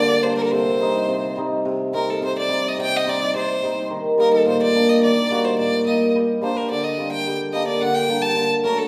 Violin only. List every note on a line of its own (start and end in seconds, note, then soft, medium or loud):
0.00 0.24 D5 loud
0.23 0.36 C5 medium
0.37 0.43 A#4 medium
0.42 0.46 A4 medium
0.42 0.53 A#4 medium
0.51 1.36 C5 medium
1.94 2.12 A#4 medium
2.10 2.23 A4 medium
2.24 2.36 C5 medium
2.39 2.70 D5 loud
2.68 2.80 D#5 medium
2.81 2.98 G5 loud
2.97 3.11 D#5 loud
3.10 3.35 D5 loud
3.36 3.87 C5 loud
4.20 4.32 A#4 medium
4.34 4.46 A4 medium
4.47 4.60 C5 loud
4.62 4.91 D5 loud
4.90 5.03 D#5 loud
5.03 5.46 D5 loud
5.45 5.58 C5 medium
5.59 5.84 D5 loud
5.87 6.12 D#5 medium
6.43 6.58 C5 medium
6.57 6.70 A#4 medium
6.71 6.86 D5 medium
6.84 7.11 D#5 medium
7.12 7.38 G5 medium
7.53 7.66 D#5 medium
7.67 7.83 D5 medium
7.81 7.96 F#5 loud
7.95 8.23 G5 loud
8.22 8.50 A5 loud
8.64 8.80 A#4 medium
8.78 8.88 A4 medium